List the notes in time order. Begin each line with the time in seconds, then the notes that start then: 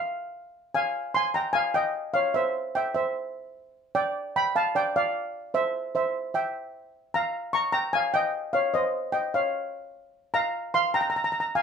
Already playing: F5
0.74 F5 G#5
1.14 G#5 C6
1.34 G5 A#5
1.53 F5 G#5
1.74 D#5 G5
2.14 C#5 F5
2.34 C5 E5
2.75 E5 G5
2.94 C5 E5
3.95 D5 G5
4.36 G5 B5
4.56 F5 A5
4.75 D5 G5
4.96 D5 F5
5.54 C5 E5
5.95 C5 E5
6.34 E5 G5
7.14 F5 A#5
7.53 A#5 C#6
7.72 G5 A#5
7.93 F5 G#5
8.14 D#5 G5
8.53 C#5 F5
8.74 C5 D#5
9.12 D#5 G5
9.34 C#5 F5
10.34 F5 A#5
10.74 F5 C6
10.94 G5 A#5
11.01 A#5
11.10 A#5
11.16 A#5
11.24 A#5
11.32 A#5
11.40 A#5
11.55 F5 G#5